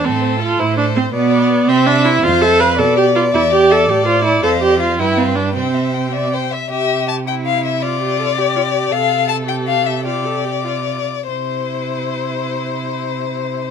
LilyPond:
<<
  \new Staff \with { instrumentName = "Violin" } { \time 6/8 \key c \major \tempo 4. = 108 a'8 c''8 a'8 c''8 a'8 c''8 | b'8 d''8 b'8 c''8 e''8 c''8 | f''8 e''8 f''8 b'8 d''8 b'8 | e''8 d''8 e''8 a'8 c''8 a'8 |
f''8 d''8 f''8 g''8 f''8 g''8 | g''8 e''8 g''8 e''8 g''8 e''8 | e''4 a''8 g''8 f''8 e''8 | d''2. |
f''4 a''8 g''8 f''8 e''8 | d''2. | c''2.~ | c''2. | }
  \new Staff \with { instrumentName = "Violin" } { \time 6/8 \key c \major a'4. c''4. | d''4. e''4. | c''4. d''4.~ | d''2. |
c''4. b'4. | c''4. d''8 c''8 e''8 | g'4. e'4. | f'4. g'4. |
a'2. | g'4. f'4 r8 | c''2.~ | c''2. | }
  \new Staff \with { instrumentName = "Viola" } { \time 6/8 \key c \major c'4 f'8 e'8 d'8 c'8 | b4. c'8 d'8 e'8 | f'8 a'8 b'8 a'8 g'8 f'8 | e'8 g'8 a'8 g'8 f'8 e'8 |
a'8 g'8 f'8 e'8 c'8 d'8 | c'4. r4. | g'4. e'4. | f'8 g'8 a'8 g'8 f'8 g'8 |
a'4. g'4. | f'8 a'8 g'8 f'8. r8. | e'2.~ | e'2. | }
  \new Staff \with { instrumentName = "Cello" } { \clef bass \time 6/8 \key c \major a,4. a,4. | b,4. c4. | f,4. b,4. | e,4. a,4. |
f,4. g,4. | c2~ c8 r8 | c2.~ | c2. |
c2.~ | c2~ c8 r8 | c2.~ | c2. | }
>>